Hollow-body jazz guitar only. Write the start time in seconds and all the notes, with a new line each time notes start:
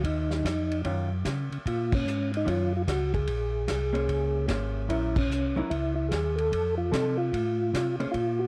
0.85 D#3 F#3 C#4 F4
2.45 D#3 F#3 C#4 F4
3.93 A#3 C#4 G#4 C5
4.48 A#3 C#4 G#4 C5
4.88 F#3 C#4 E4 A#4
5.56 F#3 C#4 E4 A#4
6.92 F3 C4 D#4 A4
8.00 A#3 C#4 G#4 C5